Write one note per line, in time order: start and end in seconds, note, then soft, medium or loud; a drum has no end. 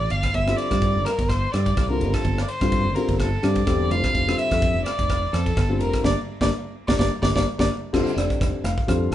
0.00 0.13 D5 medium
0.10 0.32 G1 medium
0.10 0.36 F5 medium
0.10 ride soft
0.23 kick medium
0.23 cross-stick medium
0.23 ride medium
0.34 0.53 G1 medium
0.34 0.58 E5 medium
0.34 kick medium
0.34 ride soft
0.47 1.07 D3 medium
0.47 1.07 G3 medium
0.47 1.07 C4 medium
0.47 1.07 F4 medium
0.47 cross-stick medium
0.57 1.07 D5 medium
0.57 ride medium
0.71 0.96 G2 medium
0.71 kick medium
0.71 cross-stick medium
0.71 ride medium
0.82 kick medium
0.82 ride medium
0.95 1.03 G1 medium
1.05 1.30 A#4 medium
1.05 cross-stick medium
1.05 ride medium
1.19 1.46 G1 medium
1.19 kick medium
1.19 ride soft
1.29 1.54 C5 medium
1.29 kick medium
1.29 cross-stick medium
1.29 ride soft
1.52 1.72 G2 medium
1.52 1.90 D5 medium
1.52 cross-stick medium
1.52 ride soft
1.66 kick medium
1.66 ride soft
1.77 2.02 C2 medium
1.77 kick loud
1.77 cross-stick medium
1.77 ride medium
1.89 2.35 D3 medium
1.89 2.35 G3 medium
1.89 2.36 C4 medium
1.89 2.36 F4 medium
1.89 2.15 A#4 medium
2.01 2.11 G1 medium
2.01 ride soft
2.13 2.43 A4 medium
2.13 kick medium
2.13 cross-stick medium
2.13 ride soft
2.25 2.43 G1 medium
2.25 kick medium
2.25 ride soft
2.38 2.50 D5 medium
2.38 cross-stick medium
2.48 2.96 C5 medium
2.48 ride soft
2.60 2.86 G2 medium
2.60 2.84 D3 medium
2.60 2.84 G3 medium
2.60 2.84 C4 medium
2.60 2.84 F4 medium
2.60 kick medium
2.60 cross-stick medium
2.60 ride soft
2.72 kick medium
2.72 ride medium
2.85 2.93 G1 medium
2.95 3.26 D3 medium
2.95 3.27 G3 medium
2.95 3.27 C4 medium
2.95 3.27 F4 medium
2.95 3.18 A#4 medium
2.95 ride medium
3.09 3.36 G1 medium
3.09 kick medium
3.09 ride medium
3.19 3.45 A4 medium
3.19 kick medium
3.19 cross-stick medium
3.19 ride medium
3.42 3.62 G2 medium
3.42 3.59 D3 medium
3.42 3.59 G3 medium
3.42 3.59 C4 medium
3.42 3.60 D4 medium
3.42 3.92 D5 medium
3.42 cross-stick medium
3.42 ride soft
3.55 kick medium
3.55 ride medium
3.66 3.90 E1 medium
3.66 3.88 D3 medium
3.66 3.89 G3 medium
3.66 3.89 C4 medium
3.66 3.90 G4 medium
3.66 kick loud
3.66 cross-stick medium
3.66 ride medium
3.90 4.00 F1 medium
3.90 4.19 D3 medium
3.90 4.19 G3 medium
3.90 4.20 C4 medium
3.90 4.20 F4 medium
3.90 4.40 F5 medium
3.90 ride medium
4.04 kick medium
4.04 cross-stick medium
4.04 ride medium
4.15 4.33 F1 medium
4.15 kick medium
4.15 ride medium
4.26 4.86 D3 medium
4.26 4.87 G3 medium
4.26 4.87 C4 medium
4.26 4.87 F4 medium
4.26 cross-stick medium
4.38 4.84 E5 medium
4.38 ride medium
4.51 4.76 F2 medium
4.51 kick medium
4.51 cross-stick medium
4.51 ride medium
4.62 kick loud
4.62 ride medium
4.74 4.83 F1 medium
4.84 5.35 D5 medium
4.84 cross-stick medium
4.84 ride medium
4.99 5.26 F1 medium
4.99 kick medium
4.99 ride medium
5.10 kick medium
5.10 cross-stick medium
5.10 ride medium
5.33 5.51 F2 medium
5.33 5.79 A4 medium
5.33 cross-stick medium
5.33 ride medium
5.46 kick medium
5.46 ride medium
5.57 5.81 G1 medium
5.57 kick loud
5.57 cross-stick medium
5.57 ride soft
5.69 6.04 D3 medium
5.69 6.02 G3 medium
5.69 6.04 C4 medium
5.69 6.04 F4 medium
5.80 5.91 F1 medium
5.80 6.02 A#4 medium
5.80 ride medium
5.93 kick medium
5.93 cross-stick medium
5.93 ride medium
6.04 6.14 G1 medium
6.04 6.12 G3 medium
6.04 6.12 A#3 medium
6.04 6.12 D4 medium
6.04 6.13 D5 medium
6.04 kick medium
6.04 snare medium
6.41 6.49 G1 medium
6.41 6.48 G3 medium
6.41 6.48 A#3 medium
6.41 6.48 D4 medium
6.41 6.48 D5 medium
6.41 kick medium
6.41 snare medium
6.88 6.96 G1 medium
6.88 6.95 G3 medium
6.88 6.95 A#3 medium
6.88 6.95 D4 medium
6.88 6.95 D5 medium
6.88 kick medium
6.88 snare medium
6.98 7.09 G1 medium
6.98 7.07 G3 medium
6.98 7.07 A#3 medium
6.98 7.07 D4 medium
6.98 7.07 D5 medium
6.98 kick medium
6.98 snare medium
7.22 7.32 G1 medium
7.22 7.30 G3 medium
7.22 7.30 A#3 medium
7.22 7.31 D4 medium
7.22 7.30 D5 medium
7.22 kick medium
7.22 snare medium
7.35 7.44 G1 medium
7.35 7.42 G3 medium
7.35 7.42 A#3 medium
7.35 7.42 D4 medium
7.35 7.42 D5 medium
7.35 kick medium
7.35 snare medium
7.58 7.67 G1 medium
7.58 7.66 G3 medium
7.58 7.66 A#3 medium
7.58 7.66 D4 medium
7.58 7.66 D5 medium
7.58 kick medium
7.58 snare medium
7.93 8.04 F1 medium
7.93 8.09 D3 medium
7.93 8.09 G3 medium
7.93 8.09 C4 medium
7.93 8.10 F4 loud
7.93 kick medium
7.93 cross-stick medium
7.93 crash medium
8.06 muted fingered electric bass stroke soft
8.06 closed hi-hat soft
8.16 8.27 F1 medium
8.16 8.62 D3 medium
8.16 8.62 G3 medium
8.16 8.62 C4 medium
8.16 8.63 G4 medium
8.16 8.61 D5 medium
8.16 cross-stick medium
8.16 closed hi-hat medium
8.30 kick medium
8.30 closed hi-hat soft
8.41 8.51 F1 medium
8.41 kick loud
8.41 cross-stick medium
8.41 closed hi-hat medium
8.64 8.74 F1 medium
8.64 9.08 F5 medium
8.64 cross-stick medium
8.64 closed hi-hat medium
8.78 kick medium
8.87 9.07 F2 medium
8.87 9.15 D3 medium
8.87 9.15 G3 medium
8.87 9.15 C4 medium
8.87 9.15 F4 medium
8.87 kick medium
8.87 cross-stick medium
8.87 closed hi-hat medium
9.11 9.15 C2 medium